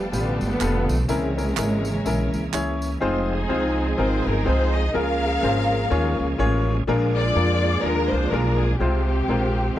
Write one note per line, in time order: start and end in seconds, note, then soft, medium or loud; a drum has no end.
0.00 1.06 F3 medium
0.00 0.11 G3 medium
0.00 1.06 A3 medium
0.00 1.06 B3 medium
0.00 1.06 G4 medium
0.00 1.08 B4 medium
0.00 1.06 F5 medium
0.00 1.06 G5 medium
0.00 1.08 A5 medium
0.12 0.37 A1 medium
0.12 1.06 B2 medium
0.12 0.49 D3 medium
0.12 0.48 G3 loud
0.12 0.47 B3 medium
0.12 0.47 F4 medium
0.12 0.47 G4 medium
0.12 0.48 B4 medium
0.12 tambourine medium
0.41 0.58 G1 medium
0.41 tambourine soft
0.50 1.05 D3 medium
0.50 1.05 F3 medium
0.50 0.89 B3 loud
0.60 0.85 F1 medium
0.60 0.95 B3 medium
0.60 0.96 F4 medium
0.60 0.96 G4 medium
0.60 0.96 A4 medium
0.60 clap medium
0.60 tambourine medium
0.88 1.06 B1 medium
0.88 0.98 A3 medium
0.88 tambourine medium
1.08 1.16 C#3 medium
1.08 2.50 C#3 medium
1.08 2.50 E3 medium
1.08 2.50 G#3 medium
1.08 2.99 A#3 medium
1.08 1.82 C4 medium
1.08 1.28 C#4 medium
1.08 1.28 E4 medium
1.08 2.98 G#4 medium
1.08 1.28 G#4 medium
1.08 1.28 A#4 loud
1.08 3.00 C#5 medium
1.08 3.00 E5 medium
1.08 3.00 G#5 medium
1.08 3.00 A#5 medium
1.08 tambourine medium
1.15 3.01 E3 medium
1.37 1.50 C#4 medium
1.37 1.50 E4 medium
1.37 1.51 G#4 medium
1.37 1.51 A#4 medium
1.37 tambourine medium
1.57 1.99 G#1 medium
1.57 1.92 C#4 medium
1.57 1.92 E4 medium
1.57 1.92 G#4 medium
1.57 1.93 A#4 medium
1.57 clap medium
1.57 tambourine medium
1.85 tambourine medium
2.05 2.30 A#1 medium
2.05 2.40 C#4 medium
2.05 2.40 E4 medium
2.05 2.41 G#4 medium
2.05 2.41 A#4 medium
2.05 tambourine medium
2.34 2.51 C2 medium
2.34 tambourine soft
2.53 2.95 C#2 medium
2.53 2.88 C#4 medium
2.53 2.88 E4 medium
2.53 2.89 G#4 medium
2.53 2.89 C#5 medium
2.53 clap medium
2.53 tambourine medium
2.82 tambourine medium
3.00 3.43 F1 loud
3.00 4.91 F3 medium
3.00 4.91 G#3 medium
3.00 3.36 C4 medium
3.00 4.91 C4 medium
3.00 3.36 D#4 medium
3.00 4.91 D#4 medium
3.00 3.36 F4 medium
3.00 3.09 G4 medium
3.00 3.37 G#4 medium
3.00 3.37 C5 loud
3.07 4.93 G#4 medium
3.31 4.23 C4 medium
3.31 3.97 D#4 medium
3.31 3.96 G#4 medium
3.48 3.91 C2 medium
3.48 3.84 C4 medium
3.48 3.84 D#4 medium
3.48 3.84 F4 medium
3.48 3.85 G#4 medium
3.48 3.85 C5 medium
3.98 4.23 G#1 loud
3.98 4.33 C4 medium
3.98 4.33 D#4 medium
3.98 4.91 D#4 medium
3.98 4.33 F4 medium
3.98 4.91 G#4 medium
3.98 4.33 G#4 medium
3.98 4.33 A#4 medium
3.98 4.27 C5 medium
4.26 4.44 G1 loud
4.26 4.47 A#4 medium
4.45 4.88 C2 medium
4.45 4.80 C4 medium
4.45 4.81 D#4 medium
4.45 4.81 F4 medium
4.45 4.81 G#4 medium
4.45 4.81 C5 medium
4.45 4.75 C5 loud
4.75 4.95 D#5 medium
4.94 5.36 C#2 loud
4.94 5.67 C#3 medium
4.94 6.84 F3 medium
4.94 6.84 G#3 medium
4.94 5.29 A#3 medium
4.94 6.84 A#3 medium
4.94 5.29 C#4 medium
4.94 6.84 C#4 medium
4.94 5.29 F4 medium
4.94 6.84 G#4 medium
4.94 5.29 G#4 medium
4.94 6.36 G#4 medium
4.94 5.30 A#4 medium
4.94 6.36 A#4 medium
4.94 6.40 F5 loud
5.43 5.84 G#1 loud
5.43 5.77 A#3 medium
5.43 5.77 C#4 medium
5.43 5.78 F4 medium
5.43 5.78 G#4 medium
5.43 5.78 C5 medium
5.90 6.15 D#2 loud
5.90 6.25 A#3 medium
5.90 6.25 C#4 medium
5.90 6.26 F4 medium
5.90 6.26 G#4 medium
5.90 6.26 C#5 loud
6.20 6.37 C#2 medium
6.38 6.80 A1 loud
6.38 6.73 A#3 loud
6.38 6.74 C#4 medium
6.38 6.74 F4 medium
6.38 6.74 G#4 medium
6.38 6.74 C#5 loud
6.87 7.29 A#1 loud
6.87 7.60 A#2 medium
6.87 8.77 F3 medium
6.87 8.77 G#3 medium
6.87 7.22 A#3 loud
6.87 8.77 A#3 medium
6.87 7.22 D4 medium
6.87 8.77 D4 medium
6.87 7.22 F4 medium
6.87 8.77 G#4 loud
6.87 7.23 G#4 medium
6.87 7.23 A#4 loud
7.16 7.83 F4 medium
7.16 8.09 G#4 medium
7.16 7.80 D5 loud
7.36 7.77 F2 loud
7.36 7.70 A#3 medium
7.36 7.70 D4 medium
7.36 7.71 F4 medium
7.36 7.71 G#4 medium
7.36 7.71 A#4 medium
7.83 8.08 D#2 loud
7.83 8.18 A#3 medium
7.83 8.18 D4 medium
7.83 8.77 D4 medium
7.83 8.18 F4 medium
7.83 8.77 F4 medium
7.83 8.19 G#4 medium
7.83 8.12 A#4 loud
7.83 8.19 A#4 medium
8.10 8.29 C2 medium
8.10 8.31 C5 loud
8.30 8.73 B1 loud
8.30 8.67 A#3 medium
8.30 8.67 D4 medium
8.30 8.67 F4 medium
8.30 8.67 G#4 medium
8.30 8.59 A#4 medium
8.30 8.67 A#4 medium
8.58 8.79 G#4 medium
8.78 9.21 C2 loud
8.78 9.53 C3 medium
8.78 9.15 G#3 medium
8.78 9.15 C4 medium
8.78 9.79 C4 medium
8.78 9.76 C4 medium
8.78 9.15 F4 medium
8.78 9.79 G4 medium
8.78 9.15 C5 medium
8.82 9.76 G#3 medium
8.82 9.76 F4 medium
9.28 9.69 A#1 medium
9.28 9.63 G#3 medium
9.28 9.63 C4 medium
9.28 9.63 F4 medium
9.28 9.64 A#4 medium
9.28 9.64 C5 medium